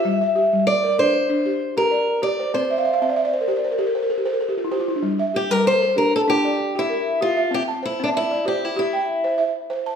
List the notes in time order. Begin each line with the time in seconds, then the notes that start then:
Already playing: E5
0.00 F4
0.05 G3
0.21 E5
0.35 G4
0.53 G3
0.67 D5
0.84 A#4
0.98 D4 A4 C5
1.29 D4
1.46 G4
1.77 G4 A#4
1.91 D5
2.22 G4 D5
2.39 C5
2.54 C4 C5
2.70 E5
2.78 F5
2.85 E5
2.93 F5
3.02 C4 E5
3.09 D5
3.16 E5
3.25 D5
3.33 C5
3.41 A#4
3.48 G4 C5
3.56 D5
3.64 C5
3.71 A#4
3.78 G4 A4
3.87 A#4
3.95 C5
4.02 A#4
4.10 A4
4.18 G4
4.25 A4 C5
4.33 A#4
4.41 A4
4.49 G4
4.57 F4
4.65 E4
4.71 G4 C5
4.80 F4
4.88 E4
4.96 D4
5.02 G3
5.19 E5
5.34 G4
5.50 G3 A#4
5.64 A#4 C5
5.82 A4
5.96 D4 G4 A#4
6.16 A4
6.28 D4 G4
6.45 D5
6.75 E4 G4
6.89 A#4
7.21 F4 G4
7.37 E5
7.51 C4 G4
7.68 A5
7.83 E4 C5
8.00 C4 D4
8.14 E4 E5
8.31 D5
8.45 G4 C5
8.64 E4
8.77 E4 G4
8.93 G5
9.24 C5
9.38 E5
9.70 C5
9.86 A5